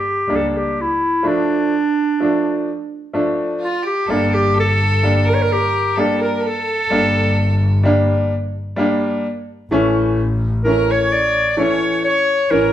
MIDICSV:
0, 0, Header, 1, 5, 480
1, 0, Start_track
1, 0, Tempo, 944882
1, 633, Time_signature, 3, 2, 24, 8
1, 3031, Tempo, 936037
1, 6498, End_track
2, 0, Start_track
2, 0, Title_t, "Violin"
2, 0, Program_c, 0, 40
2, 1830, Note_on_c, 0, 65, 74
2, 1943, Note_on_c, 0, 67, 66
2, 1951, Note_off_c, 0, 65, 0
2, 2064, Note_on_c, 0, 69, 75
2, 2072, Note_off_c, 0, 67, 0
2, 2187, Note_off_c, 0, 69, 0
2, 2190, Note_on_c, 0, 67, 77
2, 2308, Note_on_c, 0, 69, 87
2, 2315, Note_off_c, 0, 67, 0
2, 2664, Note_on_c, 0, 70, 86
2, 2672, Note_off_c, 0, 69, 0
2, 3024, Note_on_c, 0, 69, 78
2, 3032, Note_off_c, 0, 70, 0
2, 3147, Note_off_c, 0, 69, 0
2, 3150, Note_on_c, 0, 70, 65
2, 3258, Note_on_c, 0, 69, 85
2, 3266, Note_off_c, 0, 70, 0
2, 3988, Note_off_c, 0, 69, 0
2, 5440, Note_on_c, 0, 70, 74
2, 5563, Note_on_c, 0, 73, 83
2, 5571, Note_off_c, 0, 70, 0
2, 5880, Note_off_c, 0, 73, 0
2, 5882, Note_on_c, 0, 74, 51
2, 5929, Note_on_c, 0, 73, 73
2, 5937, Note_off_c, 0, 74, 0
2, 6160, Note_off_c, 0, 73, 0
2, 6163, Note_on_c, 0, 73, 77
2, 6381, Note_off_c, 0, 73, 0
2, 6404, Note_on_c, 0, 70, 77
2, 6498, Note_off_c, 0, 70, 0
2, 6498, End_track
3, 0, Start_track
3, 0, Title_t, "Clarinet"
3, 0, Program_c, 1, 71
3, 0, Note_on_c, 1, 67, 91
3, 182, Note_on_c, 1, 69, 77
3, 190, Note_off_c, 1, 67, 0
3, 244, Note_off_c, 1, 69, 0
3, 244, Note_on_c, 1, 69, 50
3, 289, Note_on_c, 1, 67, 76
3, 297, Note_off_c, 1, 69, 0
3, 413, Note_on_c, 1, 64, 93
3, 421, Note_off_c, 1, 67, 0
3, 649, Note_on_c, 1, 62, 89
3, 656, Note_off_c, 1, 64, 0
3, 1603, Note_off_c, 1, 62, 0
3, 1850, Note_on_c, 1, 65, 80
3, 1955, Note_off_c, 1, 65, 0
3, 1965, Note_on_c, 1, 67, 73
3, 2085, Note_on_c, 1, 69, 86
3, 2092, Note_off_c, 1, 67, 0
3, 2207, Note_on_c, 1, 67, 87
3, 2214, Note_off_c, 1, 69, 0
3, 2321, Note_off_c, 1, 67, 0
3, 2336, Note_on_c, 1, 69, 99
3, 2688, Note_on_c, 1, 70, 76
3, 2696, Note_off_c, 1, 69, 0
3, 2714, Note_on_c, 1, 73, 69
3, 2721, Note_off_c, 1, 70, 0
3, 2755, Note_on_c, 1, 70, 86
3, 2763, Note_off_c, 1, 73, 0
3, 2807, Note_on_c, 1, 67, 95
3, 2815, Note_off_c, 1, 70, 0
3, 3048, Note_on_c, 1, 69, 81
3, 3055, Note_off_c, 1, 67, 0
3, 3158, Note_off_c, 1, 69, 0
3, 3161, Note_on_c, 1, 70, 78
3, 3231, Note_off_c, 1, 70, 0
3, 3231, Note_on_c, 1, 70, 71
3, 3287, Note_on_c, 1, 69, 111
3, 3294, Note_off_c, 1, 70, 0
3, 4002, Note_off_c, 1, 69, 0
3, 5428, Note_on_c, 1, 70, 89
3, 5569, Note_on_c, 1, 73, 77
3, 5577, Note_off_c, 1, 70, 0
3, 5676, Note_on_c, 1, 74, 85
3, 5684, Note_off_c, 1, 73, 0
3, 5905, Note_off_c, 1, 74, 0
3, 5908, Note_on_c, 1, 73, 69
3, 6133, Note_off_c, 1, 73, 0
3, 6149, Note_on_c, 1, 73, 96
3, 6387, Note_on_c, 1, 70, 99
3, 6395, Note_off_c, 1, 73, 0
3, 6498, Note_off_c, 1, 70, 0
3, 6498, End_track
4, 0, Start_track
4, 0, Title_t, "Upright piano"
4, 0, Program_c, 2, 0
4, 139, Note_on_c, 2, 55, 57
4, 148, Note_on_c, 2, 58, 55
4, 152, Note_on_c, 2, 62, 68
4, 387, Note_off_c, 2, 55, 0
4, 391, Note_off_c, 2, 58, 0
4, 393, Note_off_c, 2, 62, 0
4, 624, Note_on_c, 2, 53, 65
4, 627, Note_on_c, 2, 57, 61
4, 633, Note_on_c, 2, 62, 65
4, 870, Note_off_c, 2, 53, 0
4, 871, Note_off_c, 2, 57, 0
4, 874, Note_off_c, 2, 62, 0
4, 1118, Note_on_c, 2, 53, 51
4, 1120, Note_on_c, 2, 57, 47
4, 1127, Note_on_c, 2, 62, 66
4, 1357, Note_off_c, 2, 53, 0
4, 1358, Note_off_c, 2, 57, 0
4, 1361, Note_off_c, 2, 62, 0
4, 1592, Note_on_c, 2, 53, 65
4, 1593, Note_on_c, 2, 57, 51
4, 1598, Note_on_c, 2, 62, 73
4, 1834, Note_off_c, 2, 53, 0
4, 1834, Note_off_c, 2, 57, 0
4, 1837, Note_off_c, 2, 62, 0
4, 2073, Note_on_c, 2, 55, 59
4, 2083, Note_on_c, 2, 58, 63
4, 2086, Note_on_c, 2, 62, 71
4, 2314, Note_off_c, 2, 55, 0
4, 2319, Note_off_c, 2, 58, 0
4, 2320, Note_off_c, 2, 62, 0
4, 2555, Note_on_c, 2, 55, 64
4, 2558, Note_on_c, 2, 58, 45
4, 2562, Note_on_c, 2, 62, 56
4, 2794, Note_off_c, 2, 55, 0
4, 2796, Note_off_c, 2, 58, 0
4, 2797, Note_off_c, 2, 62, 0
4, 3032, Note_on_c, 2, 55, 58
4, 3037, Note_on_c, 2, 58, 54
4, 3042, Note_on_c, 2, 62, 60
4, 3274, Note_off_c, 2, 55, 0
4, 3276, Note_off_c, 2, 58, 0
4, 3278, Note_off_c, 2, 62, 0
4, 3511, Note_on_c, 2, 55, 65
4, 3517, Note_on_c, 2, 58, 62
4, 3522, Note_on_c, 2, 62, 64
4, 3753, Note_off_c, 2, 55, 0
4, 3757, Note_off_c, 2, 58, 0
4, 3759, Note_off_c, 2, 62, 0
4, 3988, Note_on_c, 2, 55, 71
4, 3997, Note_on_c, 2, 58, 62
4, 3998, Note_on_c, 2, 62, 85
4, 4233, Note_off_c, 2, 55, 0
4, 4237, Note_off_c, 2, 58, 0
4, 4237, Note_off_c, 2, 62, 0
4, 4465, Note_on_c, 2, 55, 81
4, 4472, Note_on_c, 2, 58, 68
4, 4477, Note_on_c, 2, 62, 83
4, 4711, Note_off_c, 2, 55, 0
4, 4714, Note_off_c, 2, 58, 0
4, 4717, Note_off_c, 2, 62, 0
4, 4950, Note_on_c, 2, 52, 81
4, 4954, Note_on_c, 2, 57, 79
4, 4957, Note_on_c, 2, 61, 90
4, 5193, Note_off_c, 2, 52, 0
4, 5195, Note_off_c, 2, 57, 0
4, 5197, Note_off_c, 2, 61, 0
4, 5430, Note_on_c, 2, 52, 54
4, 5438, Note_on_c, 2, 57, 50
4, 5441, Note_on_c, 2, 61, 63
4, 5672, Note_off_c, 2, 52, 0
4, 5676, Note_off_c, 2, 57, 0
4, 5678, Note_off_c, 2, 61, 0
4, 5903, Note_on_c, 2, 52, 60
4, 5905, Note_on_c, 2, 57, 60
4, 5915, Note_on_c, 2, 61, 64
4, 6148, Note_off_c, 2, 52, 0
4, 6149, Note_off_c, 2, 57, 0
4, 6153, Note_off_c, 2, 61, 0
4, 6384, Note_on_c, 2, 52, 76
4, 6393, Note_on_c, 2, 61, 73
4, 6498, Note_off_c, 2, 52, 0
4, 6498, Note_off_c, 2, 61, 0
4, 6498, End_track
5, 0, Start_track
5, 0, Title_t, "Double bass"
5, 0, Program_c, 3, 43
5, 146, Note_on_c, 3, 37, 64
5, 437, Note_off_c, 3, 37, 0
5, 2073, Note_on_c, 3, 31, 91
5, 2935, Note_off_c, 3, 31, 0
5, 3507, Note_on_c, 3, 31, 94
5, 4374, Note_off_c, 3, 31, 0
5, 4944, Note_on_c, 3, 33, 100
5, 5809, Note_off_c, 3, 33, 0
5, 6381, Note_on_c, 3, 33, 88
5, 6498, Note_off_c, 3, 33, 0
5, 6498, End_track
0, 0, End_of_file